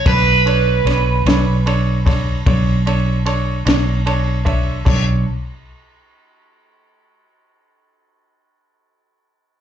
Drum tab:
CC |------------|x-----------|
RD |xxxxxxxxxxxx|------------|
SD |--oo-o---o--|------------|
BD |o----oo----o|o-----------|